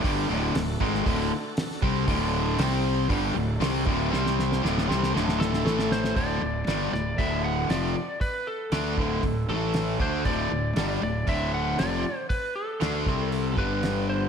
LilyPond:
<<
  \new Staff \with { instrumentName = "Lead electric guitar" } { \time 4/4 \key d \mixolydian \tempo 4 = 117 r1 | r1 | r2 r8 a'4 c''8 | d''4. d''8 e''8 fis''8 d''4 |
b'8 a'2 a'4 c''8 | d''4. d''8 e''8 fis''8 d''4 | b'8 a'2 b'4 c''8 | }
  \new Staff \with { instrumentName = "Tonewheel organ" } { \time 4/4 \key d \mixolydian <d' fis' a'>1~ | <d' fis' a'>4 <c' g' c''>4 <d' fis' a'>2 | <c' g' c''>4 <d' fis' a'>2 <a e' a'>4 | r1 |
r1 | r1 | r1 | }
  \new Staff \with { instrumentName = "Distorted electric guitar" } { \clef bass \time 4/4 \key d \mixolydian <g, d g>8 <d, a, d>8 <d, a,>8 <gis, ees gis>8 <d, a, d>8 r4 <c g c'>8 | <d, a, d>4 <c g c'>4 <g, d g>8 <d, a,>8 <c g c'>8 <d, a, d>8 | <c g c'>4 <d, a, d>8 <c g c'>8 <d, a, d>4 <a, e a>4 | <d, a, d>8 <d, a,>8 <g, d g>8 <d, a,>8 <d, a, d>4 <f, c f>8 r8 |
r4 <d a d'>8 <d, a, d>8 <d, a,>8 <a, e a>4 <d a d'>8 | <d, a, d>8 <d, a,>8 <g, d g>8 <d, a,>8 <d, a, d>4 <f, c f>8 r8 | r4 <d a d'>8 <c g c'>4 <g, d g>4. | }
  \new Staff \with { instrumentName = "Overdriven electric guitar" } { \clef bass \time 4/4 \key d \mixolydian <g, d g>8 <d, a, d>8 <d, a,>8 <gis, ees gis>8 <d, a, d>8 r4 <c g c'>8 | <d, a, d>4 <c g c'>4 <g, d g>8 <d, a,>8 <c g c'>8 <d, a, d>8 | <c g c'>4 <d, a, d>8 <c g c'>8 <d, a, d>4 <a, e a>4 | <d, a, d>8 <d, a,>8 <g, d g>8 <d, a,>8 <d, a, d>4 <f, c f>8 r8 |
r4 <d a d'>8 <d, a, d>8 <d, a,>8 <a, e a>4 <d a d'>8 | <d, a, d>8 <d, a,>8 <g, d g>8 <d, a,>8 <d, a, d>4 <f, c f>8 r8 | r4 <d a d'>8 <c g c'>4 <g, d g>4. | }
  \new Staff \with { instrumentName = "Fingered electric bass" } { \clef bass \time 4/4 \key d \mixolydian g,,8 d,,8 d,,8 gis,,8 d,,8 r4 c,8 | d,,4 c,4 g,,8 d,,8 c,8 d,,8 | c,4 d,,8 c,8 d,,4 a,,4 | d,,8 d,,8 g,,8 d,,8 d,,4 f,,8 r8 |
r4 d,8 d,,8 d,,8 a,,4 d,8 | d,,8 d,,8 g,,8 d,,8 d,,4 f,,8 r8 | r4 d,8 c,4 g,,4. | }
  \new DrumStaff \with { instrumentName = "Drums" } \drummode { \time 4/4 <hho bd>4 <hho sn>8 bd16 sn16 <hho bd>4 <hho sn>16 sn16 bd8 | <hho bd>4 <hho sn>4 <hho bd>4 <hho sn>8 bd8 | sn16 sn16 sn16 sn16 sn16 sn16 sn16 sn16 sn16 sn16 sn16 sn16 sn16 sn16 sn16 sn16 | <hho bd>4 <hho sn>8 sn8 <hho bd>4 <hho sn>4 |
<hho bd>4 <hho sn>8 bd8 <hho bd>4 <hho sn>8 bd8 | <hho bd>4 <hho sn>4 <hho bd>4 <hho sn>4 | <hho bd>4 <hho sn>8 <bd sn>8 hho8 bd8 <hho sn>4 | }
>>